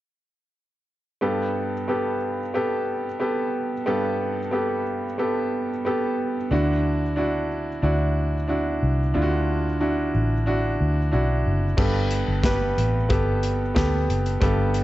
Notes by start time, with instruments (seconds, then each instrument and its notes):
1.21 upright piano G2 B3 G4 A4
1.88 upright piano B3 G4 A4
2.54 upright piano B3 G4 A4
3.20 upright piano B3 G4 A4
3.86 upright piano G2 B3 G4 A4
4.51 upright piano B3 G4 A4
5.18 upright piano B3 G4 A4
5.85 upright piano B3 G4 A4
6.51 fingered electric bass D2, upright piano D3 D4 E4 F#4
7.16 upright piano D4 E4 F#4
7.82 fingered electric bass D2, upright piano D4 E4 F#4
8.47 upright piano D4 E4 F#4
8.82 fingered electric bass C2
9.13 fingered electric bass D2, upright piano D3 D4 E4 F4
9.21 upright piano F#4
9.80 upright piano D4 E4 F#4
10.15 fingered electric bass A1
10.46 upright piano D4 E4 F#4
10.81 fingered electric bass D2
11.12 fingered electric bass B1, upright piano D4 E4 F#4
11.46 fingered electric bass F#1
11.78 fingered electric bass G1, upright piano G2 B3 G4 A4, kick, crash
12.11 closed hi-hat
12.28 fingered electric bass G1
12.44 upright piano B3 G4 B4, kick, snare, closed hi-hat
12.77 fingered electric bass A1, closed hi-hat
13.09 fingered electric bass G1, upright piano B3 G4 A4, kick, closed hi-hat
13.43 closed hi-hat
13.74 fingered electric bass D2, upright piano B3 G4 A4, kick, snare, closed hi-hat
14.09 fingered electric bass F#1, closed hi-hat
14.26 closed hi-hat
14.41 fingered electric bass G1, upright piano G2 B3 G4 A4, kick, closed hi-hat
14.74 closed hi-hat